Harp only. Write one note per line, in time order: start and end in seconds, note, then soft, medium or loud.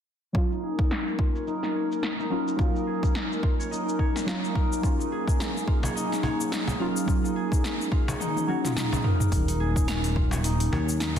0.51 1.46 D#4 medium
0.63 2.87 G#4 medium
1.19 3.43 F4 medium
1.35 1.75 C#5 medium
1.47 2.03 D#4 medium
1.75 3.59 C#5 medium
2.03 2.18 D#4 medium
2.19 2.74 D#4 medium
2.31 4.43 A#4 medium
2.75 3.71 D#4 medium
2.87 5.12 G#4 medium
3.43 5.67 F4 medium
3.59 3.99 C#5 medium
3.71 4.27 D#4 medium
3.99 5.83 C#5 medium
4.27 4.43 D#4 medium
4.44 4.99 D#4 medium
4.55 6.67 A#4 medium
4.99 5.95 D#4 medium
5.12 7.36 G#4 medium
5.67 7.91 F4 medium
5.84 6.23 C#5 medium
5.95 6.51 D#4 loud
6.24 8.07 C#5 medium
6.52 6.67 D#4 medium
6.67 7.24 D#4 medium
6.79 8.92 A#4 medium
7.24 8.19 D#4 medium
7.36 9.60 G#4 medium
7.92 10.15 F4 medium
8.08 8.48 C#5 medium
8.20 8.76 D#4 loud
8.48 10.32 C#5 medium
8.76 8.91 D#4 medium
8.92 9.48 D#4 medium
9.04 11.16 A#4 medium
9.48 10.44 D#4 medium
9.60 11.19 G#4 medium
10.16 11.19 F4 medium
10.32 10.72 C#5 medium
10.44 11.00 D#4 medium
10.72 11.19 C#5 medium
11.00 11.16 D#4 medium